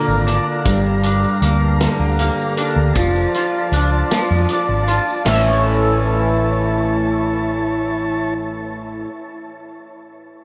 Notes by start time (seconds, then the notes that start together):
Already playing: A#2 D3 A#3 D4 F4 D5 A#5
0.08 G#1, tambourine
0.27 D4, closed hi-hat
0.65 G1 G2 G4 F5 A#5, kick, closed hi-hat, tambourine
1.03 D4, closed hi-hat, tambourine
1.24 tambourine
1.42 D2 A#3, closed hi-hat
1.80 D3, snare, closed hi-hat, tambourine
1.99 D2
2.19 A#3, closed hi-hat
2.39 tambourine
2.57 D4, closed hi-hat
2.76 D2
2.93 F1 F3 F4 D5 A5, kick, closed hi-hat, tambourine
3.16 tambourine
3.34 F4, closed hi-hat
3.72 C#2 D4, closed hi-hat, tambourine
4.11 F3, snare, closed hi-hat, tambourine
4.31 F2
4.49 D4, closed hi-hat
4.69 G#1
4.88 F4, closed hi-hat
5.08 tambourine
5.25 A1 A2 E3 A3 C#4 E4 C#5 A5, snare, tambourine, splash
5.29 E4